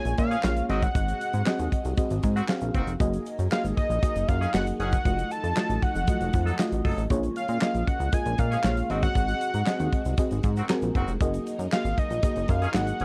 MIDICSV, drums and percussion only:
0, 0, Header, 1, 2, 480
1, 0, Start_track
1, 0, Tempo, 512821
1, 890, Time_signature, 4, 2, 24, 8
1, 12214, End_track
2, 0, Start_track
2, 0, Title_t, "Drums"
2, 46, Note_on_c, 9, 42, 57
2, 56, Note_on_c, 9, 82, 52
2, 140, Note_off_c, 9, 42, 0
2, 149, Note_off_c, 9, 82, 0
2, 165, Note_on_c, 9, 42, 79
2, 171, Note_on_c, 9, 36, 96
2, 171, Note_on_c, 9, 82, 52
2, 259, Note_off_c, 9, 42, 0
2, 265, Note_off_c, 9, 36, 0
2, 265, Note_off_c, 9, 82, 0
2, 293, Note_on_c, 9, 42, 56
2, 300, Note_on_c, 9, 82, 47
2, 387, Note_off_c, 9, 42, 0
2, 393, Note_off_c, 9, 82, 0
2, 404, Note_on_c, 9, 39, 91
2, 409, Note_on_c, 9, 38, 113
2, 413, Note_on_c, 9, 82, 90
2, 498, Note_off_c, 9, 39, 0
2, 503, Note_off_c, 9, 38, 0
2, 507, Note_off_c, 9, 82, 0
2, 530, Note_on_c, 9, 42, 61
2, 530, Note_on_c, 9, 82, 50
2, 623, Note_off_c, 9, 42, 0
2, 623, Note_off_c, 9, 82, 0
2, 651, Note_on_c, 9, 42, 78
2, 744, Note_off_c, 9, 42, 0
2, 770, Note_on_c, 9, 42, 50
2, 771, Note_on_c, 9, 82, 57
2, 772, Note_on_c, 9, 36, 103
2, 864, Note_off_c, 9, 42, 0
2, 864, Note_off_c, 9, 82, 0
2, 866, Note_off_c, 9, 36, 0
2, 890, Note_on_c, 9, 36, 112
2, 890, Note_on_c, 9, 42, 85
2, 894, Note_on_c, 9, 82, 75
2, 983, Note_off_c, 9, 36, 0
2, 984, Note_off_c, 9, 42, 0
2, 987, Note_off_c, 9, 82, 0
2, 1014, Note_on_c, 9, 82, 53
2, 1015, Note_on_c, 9, 42, 54
2, 1107, Note_off_c, 9, 82, 0
2, 1108, Note_off_c, 9, 42, 0
2, 1133, Note_on_c, 9, 82, 52
2, 1134, Note_on_c, 9, 42, 76
2, 1227, Note_off_c, 9, 82, 0
2, 1228, Note_off_c, 9, 42, 0
2, 1249, Note_on_c, 9, 42, 54
2, 1252, Note_on_c, 9, 82, 57
2, 1342, Note_off_c, 9, 42, 0
2, 1346, Note_off_c, 9, 82, 0
2, 1366, Note_on_c, 9, 82, 69
2, 1371, Note_on_c, 9, 39, 95
2, 1376, Note_on_c, 9, 38, 121
2, 1460, Note_off_c, 9, 82, 0
2, 1465, Note_off_c, 9, 39, 0
2, 1469, Note_off_c, 9, 38, 0
2, 1487, Note_on_c, 9, 82, 51
2, 1493, Note_on_c, 9, 42, 57
2, 1580, Note_off_c, 9, 82, 0
2, 1586, Note_off_c, 9, 42, 0
2, 1611, Note_on_c, 9, 36, 92
2, 1614, Note_on_c, 9, 42, 82
2, 1705, Note_off_c, 9, 36, 0
2, 1708, Note_off_c, 9, 42, 0
2, 1729, Note_on_c, 9, 42, 49
2, 1731, Note_on_c, 9, 82, 57
2, 1823, Note_off_c, 9, 42, 0
2, 1825, Note_off_c, 9, 82, 0
2, 1847, Note_on_c, 9, 82, 66
2, 1849, Note_on_c, 9, 36, 119
2, 1849, Note_on_c, 9, 42, 101
2, 1941, Note_off_c, 9, 82, 0
2, 1942, Note_off_c, 9, 42, 0
2, 1943, Note_off_c, 9, 36, 0
2, 1970, Note_on_c, 9, 42, 62
2, 1970, Note_on_c, 9, 82, 50
2, 2063, Note_off_c, 9, 42, 0
2, 2064, Note_off_c, 9, 82, 0
2, 2087, Note_on_c, 9, 42, 78
2, 2088, Note_on_c, 9, 82, 54
2, 2092, Note_on_c, 9, 36, 95
2, 2180, Note_off_c, 9, 42, 0
2, 2181, Note_off_c, 9, 82, 0
2, 2186, Note_off_c, 9, 36, 0
2, 2215, Note_on_c, 9, 42, 55
2, 2215, Note_on_c, 9, 82, 49
2, 2308, Note_off_c, 9, 82, 0
2, 2309, Note_off_c, 9, 42, 0
2, 2326, Note_on_c, 9, 39, 93
2, 2327, Note_on_c, 9, 82, 84
2, 2330, Note_on_c, 9, 38, 121
2, 2419, Note_off_c, 9, 39, 0
2, 2421, Note_off_c, 9, 82, 0
2, 2424, Note_off_c, 9, 38, 0
2, 2440, Note_on_c, 9, 82, 53
2, 2450, Note_on_c, 9, 42, 60
2, 2533, Note_off_c, 9, 82, 0
2, 2543, Note_off_c, 9, 42, 0
2, 2569, Note_on_c, 9, 36, 90
2, 2569, Note_on_c, 9, 42, 75
2, 2662, Note_off_c, 9, 42, 0
2, 2663, Note_off_c, 9, 36, 0
2, 2690, Note_on_c, 9, 42, 55
2, 2690, Note_on_c, 9, 82, 53
2, 2783, Note_off_c, 9, 82, 0
2, 2784, Note_off_c, 9, 42, 0
2, 2809, Note_on_c, 9, 36, 116
2, 2810, Note_on_c, 9, 42, 81
2, 2816, Note_on_c, 9, 82, 72
2, 2903, Note_off_c, 9, 36, 0
2, 2904, Note_off_c, 9, 42, 0
2, 2909, Note_off_c, 9, 82, 0
2, 2933, Note_on_c, 9, 82, 52
2, 2935, Note_on_c, 9, 42, 51
2, 3026, Note_off_c, 9, 82, 0
2, 3028, Note_off_c, 9, 42, 0
2, 3050, Note_on_c, 9, 82, 52
2, 3056, Note_on_c, 9, 42, 79
2, 3143, Note_off_c, 9, 82, 0
2, 3149, Note_off_c, 9, 42, 0
2, 3172, Note_on_c, 9, 82, 57
2, 3174, Note_on_c, 9, 42, 58
2, 3266, Note_off_c, 9, 82, 0
2, 3268, Note_off_c, 9, 42, 0
2, 3286, Note_on_c, 9, 82, 74
2, 3295, Note_on_c, 9, 39, 94
2, 3299, Note_on_c, 9, 38, 123
2, 3379, Note_off_c, 9, 82, 0
2, 3388, Note_off_c, 9, 39, 0
2, 3393, Note_off_c, 9, 38, 0
2, 3414, Note_on_c, 9, 82, 49
2, 3417, Note_on_c, 9, 42, 52
2, 3508, Note_off_c, 9, 82, 0
2, 3510, Note_off_c, 9, 42, 0
2, 3532, Note_on_c, 9, 36, 95
2, 3536, Note_on_c, 9, 42, 76
2, 3626, Note_off_c, 9, 36, 0
2, 3630, Note_off_c, 9, 42, 0
2, 3652, Note_on_c, 9, 42, 47
2, 3657, Note_on_c, 9, 82, 57
2, 3745, Note_off_c, 9, 42, 0
2, 3751, Note_off_c, 9, 82, 0
2, 3769, Note_on_c, 9, 36, 125
2, 3771, Note_on_c, 9, 42, 105
2, 3772, Note_on_c, 9, 82, 71
2, 3863, Note_off_c, 9, 36, 0
2, 3865, Note_off_c, 9, 42, 0
2, 3865, Note_off_c, 9, 82, 0
2, 3891, Note_on_c, 9, 42, 63
2, 3894, Note_on_c, 9, 82, 48
2, 3985, Note_off_c, 9, 42, 0
2, 3988, Note_off_c, 9, 82, 0
2, 4010, Note_on_c, 9, 42, 81
2, 4012, Note_on_c, 9, 36, 97
2, 4014, Note_on_c, 9, 82, 51
2, 4104, Note_off_c, 9, 42, 0
2, 4106, Note_off_c, 9, 36, 0
2, 4107, Note_off_c, 9, 82, 0
2, 4138, Note_on_c, 9, 42, 56
2, 4138, Note_on_c, 9, 82, 49
2, 4231, Note_off_c, 9, 82, 0
2, 4232, Note_off_c, 9, 42, 0
2, 4249, Note_on_c, 9, 39, 94
2, 4254, Note_on_c, 9, 38, 111
2, 4254, Note_on_c, 9, 82, 92
2, 4343, Note_off_c, 9, 39, 0
2, 4347, Note_off_c, 9, 38, 0
2, 4348, Note_off_c, 9, 82, 0
2, 4365, Note_on_c, 9, 82, 54
2, 4372, Note_on_c, 9, 42, 64
2, 4459, Note_off_c, 9, 82, 0
2, 4466, Note_off_c, 9, 42, 0
2, 4491, Note_on_c, 9, 42, 74
2, 4585, Note_off_c, 9, 42, 0
2, 4609, Note_on_c, 9, 82, 55
2, 4612, Note_on_c, 9, 36, 106
2, 4613, Note_on_c, 9, 42, 52
2, 4702, Note_off_c, 9, 82, 0
2, 4706, Note_off_c, 9, 36, 0
2, 4707, Note_off_c, 9, 42, 0
2, 4730, Note_on_c, 9, 36, 115
2, 4731, Note_on_c, 9, 42, 86
2, 4735, Note_on_c, 9, 82, 72
2, 4824, Note_off_c, 9, 36, 0
2, 4825, Note_off_c, 9, 42, 0
2, 4828, Note_off_c, 9, 82, 0
2, 4852, Note_on_c, 9, 82, 55
2, 4856, Note_on_c, 9, 42, 58
2, 4946, Note_off_c, 9, 82, 0
2, 4949, Note_off_c, 9, 42, 0
2, 4970, Note_on_c, 9, 82, 50
2, 4973, Note_on_c, 9, 42, 74
2, 5063, Note_off_c, 9, 82, 0
2, 5067, Note_off_c, 9, 42, 0
2, 5090, Note_on_c, 9, 42, 56
2, 5094, Note_on_c, 9, 82, 53
2, 5184, Note_off_c, 9, 42, 0
2, 5187, Note_off_c, 9, 82, 0
2, 5204, Note_on_c, 9, 82, 75
2, 5211, Note_on_c, 9, 39, 96
2, 5216, Note_on_c, 9, 38, 127
2, 5298, Note_off_c, 9, 82, 0
2, 5305, Note_off_c, 9, 39, 0
2, 5310, Note_off_c, 9, 38, 0
2, 5331, Note_on_c, 9, 82, 45
2, 5335, Note_on_c, 9, 42, 58
2, 5424, Note_off_c, 9, 82, 0
2, 5428, Note_off_c, 9, 42, 0
2, 5452, Note_on_c, 9, 36, 97
2, 5455, Note_on_c, 9, 42, 72
2, 5546, Note_off_c, 9, 36, 0
2, 5548, Note_off_c, 9, 42, 0
2, 5572, Note_on_c, 9, 82, 58
2, 5573, Note_on_c, 9, 42, 53
2, 5666, Note_off_c, 9, 42, 0
2, 5666, Note_off_c, 9, 82, 0
2, 5686, Note_on_c, 9, 42, 109
2, 5689, Note_on_c, 9, 36, 125
2, 5689, Note_on_c, 9, 82, 71
2, 5779, Note_off_c, 9, 42, 0
2, 5782, Note_off_c, 9, 82, 0
2, 5783, Note_off_c, 9, 36, 0
2, 5809, Note_on_c, 9, 42, 62
2, 5813, Note_on_c, 9, 82, 50
2, 5903, Note_off_c, 9, 42, 0
2, 5907, Note_off_c, 9, 82, 0
2, 5928, Note_on_c, 9, 42, 78
2, 5928, Note_on_c, 9, 82, 52
2, 5932, Note_on_c, 9, 36, 97
2, 6021, Note_off_c, 9, 42, 0
2, 6022, Note_off_c, 9, 82, 0
2, 6026, Note_off_c, 9, 36, 0
2, 6057, Note_on_c, 9, 42, 56
2, 6060, Note_on_c, 9, 82, 47
2, 6150, Note_off_c, 9, 42, 0
2, 6154, Note_off_c, 9, 82, 0
2, 6167, Note_on_c, 9, 39, 93
2, 6171, Note_on_c, 9, 38, 115
2, 6177, Note_on_c, 9, 82, 90
2, 6260, Note_off_c, 9, 39, 0
2, 6265, Note_off_c, 9, 38, 0
2, 6271, Note_off_c, 9, 82, 0
2, 6291, Note_on_c, 9, 82, 52
2, 6293, Note_on_c, 9, 42, 62
2, 6385, Note_off_c, 9, 82, 0
2, 6387, Note_off_c, 9, 42, 0
2, 6409, Note_on_c, 9, 46, 79
2, 6410, Note_on_c, 9, 36, 98
2, 6503, Note_off_c, 9, 46, 0
2, 6504, Note_off_c, 9, 36, 0
2, 6533, Note_on_c, 9, 42, 53
2, 6533, Note_on_c, 9, 82, 53
2, 6626, Note_off_c, 9, 82, 0
2, 6627, Note_off_c, 9, 42, 0
2, 6646, Note_on_c, 9, 42, 80
2, 6649, Note_on_c, 9, 36, 106
2, 6661, Note_on_c, 9, 82, 76
2, 6740, Note_off_c, 9, 42, 0
2, 6742, Note_off_c, 9, 36, 0
2, 6755, Note_off_c, 9, 82, 0
2, 6769, Note_on_c, 9, 42, 54
2, 6775, Note_on_c, 9, 82, 51
2, 6863, Note_off_c, 9, 42, 0
2, 6868, Note_off_c, 9, 82, 0
2, 6889, Note_on_c, 9, 42, 73
2, 6896, Note_on_c, 9, 82, 51
2, 6982, Note_off_c, 9, 42, 0
2, 6990, Note_off_c, 9, 82, 0
2, 7003, Note_on_c, 9, 42, 50
2, 7016, Note_on_c, 9, 82, 54
2, 7097, Note_off_c, 9, 42, 0
2, 7110, Note_off_c, 9, 82, 0
2, 7127, Note_on_c, 9, 39, 97
2, 7130, Note_on_c, 9, 82, 74
2, 7132, Note_on_c, 9, 38, 127
2, 7221, Note_off_c, 9, 39, 0
2, 7223, Note_off_c, 9, 82, 0
2, 7226, Note_off_c, 9, 38, 0
2, 7249, Note_on_c, 9, 42, 52
2, 7253, Note_on_c, 9, 82, 47
2, 7342, Note_off_c, 9, 42, 0
2, 7347, Note_off_c, 9, 82, 0
2, 7370, Note_on_c, 9, 36, 98
2, 7372, Note_on_c, 9, 42, 77
2, 7464, Note_off_c, 9, 36, 0
2, 7465, Note_off_c, 9, 42, 0
2, 7488, Note_on_c, 9, 42, 49
2, 7494, Note_on_c, 9, 82, 55
2, 7582, Note_off_c, 9, 42, 0
2, 7587, Note_off_c, 9, 82, 0
2, 7605, Note_on_c, 9, 42, 113
2, 7608, Note_on_c, 9, 36, 127
2, 7611, Note_on_c, 9, 82, 66
2, 7699, Note_off_c, 9, 42, 0
2, 7701, Note_off_c, 9, 36, 0
2, 7704, Note_off_c, 9, 82, 0
2, 7727, Note_on_c, 9, 42, 59
2, 7733, Note_on_c, 9, 82, 52
2, 7821, Note_off_c, 9, 42, 0
2, 7827, Note_off_c, 9, 82, 0
2, 7844, Note_on_c, 9, 42, 80
2, 7849, Note_on_c, 9, 82, 52
2, 7850, Note_on_c, 9, 36, 90
2, 7938, Note_off_c, 9, 42, 0
2, 7943, Note_off_c, 9, 82, 0
2, 7944, Note_off_c, 9, 36, 0
2, 7973, Note_on_c, 9, 42, 58
2, 7977, Note_on_c, 9, 82, 49
2, 8066, Note_off_c, 9, 42, 0
2, 8070, Note_off_c, 9, 82, 0
2, 8084, Note_on_c, 9, 39, 95
2, 8089, Note_on_c, 9, 38, 117
2, 8091, Note_on_c, 9, 82, 85
2, 8178, Note_off_c, 9, 39, 0
2, 8182, Note_off_c, 9, 38, 0
2, 8184, Note_off_c, 9, 82, 0
2, 8208, Note_on_c, 9, 82, 54
2, 8210, Note_on_c, 9, 42, 63
2, 8302, Note_off_c, 9, 82, 0
2, 8304, Note_off_c, 9, 42, 0
2, 8329, Note_on_c, 9, 42, 73
2, 8423, Note_off_c, 9, 42, 0
2, 8447, Note_on_c, 9, 42, 56
2, 8450, Note_on_c, 9, 36, 110
2, 8452, Note_on_c, 9, 82, 55
2, 8541, Note_off_c, 9, 42, 0
2, 8544, Note_off_c, 9, 36, 0
2, 8546, Note_off_c, 9, 82, 0
2, 8566, Note_on_c, 9, 42, 79
2, 8568, Note_on_c, 9, 36, 115
2, 8579, Note_on_c, 9, 82, 68
2, 8660, Note_off_c, 9, 42, 0
2, 8661, Note_off_c, 9, 36, 0
2, 8673, Note_off_c, 9, 82, 0
2, 8691, Note_on_c, 9, 42, 53
2, 8696, Note_on_c, 9, 82, 54
2, 8784, Note_off_c, 9, 42, 0
2, 8790, Note_off_c, 9, 82, 0
2, 8808, Note_on_c, 9, 42, 80
2, 8814, Note_on_c, 9, 82, 56
2, 8902, Note_off_c, 9, 42, 0
2, 8907, Note_off_c, 9, 82, 0
2, 8927, Note_on_c, 9, 42, 56
2, 8936, Note_on_c, 9, 82, 53
2, 9021, Note_off_c, 9, 42, 0
2, 9029, Note_off_c, 9, 82, 0
2, 9047, Note_on_c, 9, 39, 97
2, 9049, Note_on_c, 9, 82, 80
2, 9052, Note_on_c, 9, 38, 127
2, 9140, Note_off_c, 9, 39, 0
2, 9143, Note_off_c, 9, 82, 0
2, 9145, Note_off_c, 9, 38, 0
2, 9171, Note_on_c, 9, 42, 56
2, 9172, Note_on_c, 9, 82, 49
2, 9265, Note_off_c, 9, 42, 0
2, 9266, Note_off_c, 9, 82, 0
2, 9290, Note_on_c, 9, 36, 99
2, 9292, Note_on_c, 9, 42, 79
2, 9384, Note_off_c, 9, 36, 0
2, 9386, Note_off_c, 9, 42, 0
2, 9409, Note_on_c, 9, 82, 52
2, 9410, Note_on_c, 9, 42, 50
2, 9503, Note_off_c, 9, 82, 0
2, 9504, Note_off_c, 9, 42, 0
2, 9525, Note_on_c, 9, 42, 110
2, 9527, Note_on_c, 9, 36, 127
2, 9531, Note_on_c, 9, 82, 69
2, 9618, Note_off_c, 9, 42, 0
2, 9620, Note_off_c, 9, 36, 0
2, 9624, Note_off_c, 9, 82, 0
2, 9649, Note_on_c, 9, 42, 57
2, 9652, Note_on_c, 9, 82, 49
2, 9743, Note_off_c, 9, 42, 0
2, 9746, Note_off_c, 9, 82, 0
2, 9765, Note_on_c, 9, 42, 80
2, 9766, Note_on_c, 9, 82, 52
2, 9770, Note_on_c, 9, 36, 93
2, 9858, Note_off_c, 9, 42, 0
2, 9859, Note_off_c, 9, 82, 0
2, 9864, Note_off_c, 9, 36, 0
2, 9890, Note_on_c, 9, 82, 47
2, 9894, Note_on_c, 9, 42, 56
2, 9984, Note_off_c, 9, 82, 0
2, 9988, Note_off_c, 9, 42, 0
2, 10006, Note_on_c, 9, 82, 84
2, 10007, Note_on_c, 9, 39, 98
2, 10012, Note_on_c, 9, 38, 122
2, 10100, Note_off_c, 9, 82, 0
2, 10101, Note_off_c, 9, 39, 0
2, 10105, Note_off_c, 9, 38, 0
2, 10123, Note_on_c, 9, 82, 56
2, 10130, Note_on_c, 9, 42, 63
2, 10217, Note_off_c, 9, 82, 0
2, 10223, Note_off_c, 9, 42, 0
2, 10250, Note_on_c, 9, 36, 88
2, 10250, Note_on_c, 9, 42, 76
2, 10343, Note_off_c, 9, 36, 0
2, 10344, Note_off_c, 9, 42, 0
2, 10368, Note_on_c, 9, 82, 54
2, 10370, Note_on_c, 9, 42, 54
2, 10462, Note_off_c, 9, 82, 0
2, 10464, Note_off_c, 9, 42, 0
2, 10489, Note_on_c, 9, 36, 119
2, 10490, Note_on_c, 9, 42, 82
2, 10497, Note_on_c, 9, 82, 76
2, 10582, Note_off_c, 9, 36, 0
2, 10583, Note_off_c, 9, 42, 0
2, 10591, Note_off_c, 9, 82, 0
2, 10613, Note_on_c, 9, 42, 57
2, 10616, Note_on_c, 9, 82, 54
2, 10707, Note_off_c, 9, 42, 0
2, 10709, Note_off_c, 9, 82, 0
2, 10734, Note_on_c, 9, 42, 70
2, 10735, Note_on_c, 9, 82, 51
2, 10828, Note_off_c, 9, 42, 0
2, 10828, Note_off_c, 9, 82, 0
2, 10850, Note_on_c, 9, 42, 54
2, 10856, Note_on_c, 9, 82, 58
2, 10943, Note_off_c, 9, 42, 0
2, 10950, Note_off_c, 9, 82, 0
2, 10972, Note_on_c, 9, 82, 68
2, 10973, Note_on_c, 9, 39, 96
2, 10978, Note_on_c, 9, 38, 122
2, 11065, Note_off_c, 9, 82, 0
2, 11067, Note_off_c, 9, 39, 0
2, 11071, Note_off_c, 9, 38, 0
2, 11090, Note_on_c, 9, 42, 53
2, 11094, Note_on_c, 9, 82, 48
2, 11184, Note_off_c, 9, 42, 0
2, 11187, Note_off_c, 9, 82, 0
2, 11211, Note_on_c, 9, 36, 93
2, 11212, Note_on_c, 9, 42, 76
2, 11304, Note_off_c, 9, 36, 0
2, 11305, Note_off_c, 9, 42, 0
2, 11329, Note_on_c, 9, 42, 51
2, 11339, Note_on_c, 9, 82, 58
2, 11423, Note_off_c, 9, 42, 0
2, 11433, Note_off_c, 9, 82, 0
2, 11444, Note_on_c, 9, 42, 109
2, 11448, Note_on_c, 9, 36, 127
2, 11458, Note_on_c, 9, 82, 66
2, 11538, Note_off_c, 9, 42, 0
2, 11542, Note_off_c, 9, 36, 0
2, 11551, Note_off_c, 9, 82, 0
2, 11567, Note_on_c, 9, 42, 61
2, 11578, Note_on_c, 9, 82, 51
2, 11660, Note_off_c, 9, 42, 0
2, 11671, Note_off_c, 9, 82, 0
2, 11682, Note_on_c, 9, 42, 77
2, 11691, Note_on_c, 9, 36, 94
2, 11691, Note_on_c, 9, 82, 52
2, 11775, Note_off_c, 9, 42, 0
2, 11784, Note_off_c, 9, 36, 0
2, 11785, Note_off_c, 9, 82, 0
2, 11811, Note_on_c, 9, 42, 59
2, 11820, Note_on_c, 9, 82, 48
2, 11904, Note_off_c, 9, 42, 0
2, 11913, Note_off_c, 9, 82, 0
2, 11924, Note_on_c, 9, 39, 94
2, 11928, Note_on_c, 9, 38, 116
2, 11936, Note_on_c, 9, 82, 88
2, 12017, Note_off_c, 9, 39, 0
2, 12022, Note_off_c, 9, 38, 0
2, 12030, Note_off_c, 9, 82, 0
2, 12046, Note_on_c, 9, 42, 61
2, 12054, Note_on_c, 9, 82, 55
2, 12140, Note_off_c, 9, 42, 0
2, 12147, Note_off_c, 9, 82, 0
2, 12166, Note_on_c, 9, 42, 77
2, 12214, Note_off_c, 9, 42, 0
2, 12214, End_track
0, 0, End_of_file